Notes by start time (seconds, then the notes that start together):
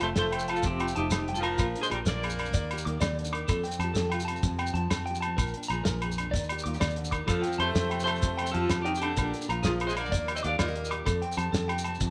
Already playing: F2
0.00 F1 A3 F4 A4 C5 A5, closed hi-hat, low agogo, shekere
0.16 F1 A4 C5, snare, closed hi-hat, shekere
0.21 A3
0.32 F2 F4 G5, closed hi-hat, low agogo
0.39 shekere
0.48 F4 A4 A5, closed hi-hat, low agogo
0.53 F3, shekere
0.63 F1 F2 C4 G4, kick, closed hi-hat, shekere
0.69 C3
0.80 F4 G5, closed hi-hat, low agogo
0.88 shekere
0.95 F1 C3 A3 D#4 G4 A5, closed hi-hat
1.11 F1 F2, snare, closed hi-hat, low agogo, shekere
1.28 G2 G5, closed hi-hat
1.34 F4 A4, shekere
1.40 F3 F4 A#4 A5, closed hi-hat
1.44 A2 F3, low agogo
1.58 A#1 A#2 A#4, kick, closed hi-hat, low agogo, shekere
1.75 D4, closed hi-hat, shekere
1.81 G#3 G#4 C5, shekere
1.90 A#1 F3 G3 G4 G#4 A#4, closed hi-hat, low agogo, shekere
2.06 A#1 A#3 D4 A#4 D5, snare, closed hi-hat, shekere
2.23 F2 G#4, closed hi-hat, low agogo
2.30 shekere
2.39 D4, closed hi-hat, low agogo
2.45 shekere
2.54 D#2 D#3 D5, kick, closed hi-hat, shekere
2.71 G4, closed hi-hat, low agogo
2.78 shekere
2.85 D#2 A#3 G4 D6, closed hi-hat
3.01 D#2 C3 D5, snare, closed hi-hat, low agogo, shekere
3.19 D3, closed hi-hat
3.25 shekere
3.33 D#3 D6, closed hi-hat, low agogo
3.48 F2 A4, kick, closed hi-hat, low agogo, shekere
3.64 C4 G5, closed hi-hat, shekere
3.71 shekere
3.79 F2 F3 A5, closed hi-hat, low agogo, shekere
3.83 G4
3.94 F2 A4, snare, closed hi-hat, shekere
3.99 muted nylon-string guitar stroke
4.10 C3 F4 G5, closed hi-hat, low agogo
4.20 G4, shekere
4.25 A5, closed hi-hat, low agogo
4.31 C4
4.36 shekere
4.43 F2, kick, closed hi-hat, shekere
4.59 C4 G5, closed hi-hat, low agogo
4.67 shekere
4.74 F2 F3 A5, muted nylon-string guitar stroke, closed hi-hat
4.90 F2 C4, snare, closed hi-hat, low agogo, shekere
5.06 G5, closed hi-hat
5.10 C3 G4
5.15 shekere
5.21 A5, closed hi-hat, low agogo
5.27 C4
5.37 A#1 A#2 A#4, kick, closed hi-hat, low agogo, shekere
5.47 shekere
5.54 D4, closed hi-hat
5.63 shekere
5.68 A#1 F3 G#4 A#5, closed hi-hat, low agogo, shekere
5.84 A#1 A#4, snare, closed hi-hat, shekere
6.02 F2 G#4, closed hi-hat, low agogo
6.11 shekere
6.18 D4, closed hi-hat, low agogo, shekere
6.31 D#2 D5, kick, closed hi-hat
6.35 D#3, shekere
6.43 shekere
6.49 G4, closed hi-hat, low agogo
6.59 shekere
6.64 D#2 A#3 F4 D6, closed hi-hat
6.74 G4, shekere
6.80 D#2 C3 D5, snare, closed hi-hat, low agogo, shekere
6.90 shekere
6.96 D3, closed hi-hat
7.04 shekere
7.11 D#3 D6, kick, closed hi-hat, low agogo, shekere
7.27 F2 F3 F4 A4, kick, closed hi-hat, low agogo, shekere
7.42 G5, closed hi-hat, shekere
7.47 C4
7.52 shekere
7.58 F2 F3 A3 G4 A4 C5 A5, closed hi-hat, low agogo
7.74 F2 A4, snare, closed hi-hat, shekere
7.78 C4
7.90 C3 G5, closed hi-hat, low agogo
7.95 G4
8.00 shekere
8.04 A3 A4 C5 A5, closed hi-hat, low agogo
8.11 C4
8.16 shekere
8.22 F2, kick, closed hi-hat, shekere
8.37 G5, closed hi-hat, low agogo
8.42 C4
8.46 shekere
8.51 F2 F3 F4 A4 A5, closed hi-hat
8.56 F3 G4
8.70 F2, snare, closed hi-hat, low agogo, shekere
8.82 D#3 D#4 G4 G5, closed hi-hat
8.88 C3 C4
8.95 G4, shekere
9.00 D3 D4 A5, closed hi-hat, low agogo
9.05 C4
9.16 A#1 A#2 A#4, kick, closed hi-hat, low agogo, shekere
9.34 D4, closed hi-hat, shekere
9.42 shekere
9.49 A#1 F3 F4 A#5, closed hi-hat, low agogo, shekere
9.63 A#1 A#2 F3 F4 G#4 A#4, snare, closed hi-hat, shekere
9.80 C3, closed hi-hat, low agogo
9.86 G#3 G#4 C5, shekere
9.95 D3 A#3 A#4 D5, closed hi-hat, low agogo
10.06 shekere
10.12 D#2 D#3 D5, kick, closed hi-hat, shekere
10.28 G4, closed hi-hat, low agogo
10.35 C4 C5 D#5, shekere
10.43 D#2 A#3 D4 G4 D5 F5 D6, closed hi-hat
10.58 D#2 A#3 F4 A#4 D5 D#5, snare, closed hi-hat, low agogo, shekere
10.68 G4
10.75 A#2 G4, closed hi-hat
10.85 shekere
10.91 G4 D6, closed hi-hat, low agogo
11.06 F2 A4, kick, closed hi-hat, low agogo, shekere
11.22 C4 G5, closed hi-hat
11.32 shekere
11.37 F2 F3 G4 A5, closed hi-hat, low agogo, shekere
11.52 F2 C4 A4, snare, closed hi-hat, shekere
11.68 C3 G4 G5, closed hi-hat, low agogo
11.78 shekere
11.84 C4 A5, closed hi-hat, low agogo
11.95 shekere
12.00 F2, kick, closed hi-hat, shekere